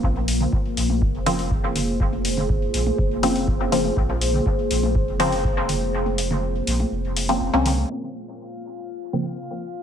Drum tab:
HH |--o---o---oo--o-|--o---o---oo--o-|--o---o---oo--o-|--o---o---oo--o-|
T1 |-o-----o--------|-o-o---o-------o|-o-----o--------|-o-o---o-------o|
T2 |---o------o---o-|---o------------|---o------o---o-|---o----------o-|
BD |o---o---o---o---|o---o---o---o---|o---o---o---o---|----------------|

HH |----------------|
T1 |----------------|
T2 |----------------|
BD |----------------|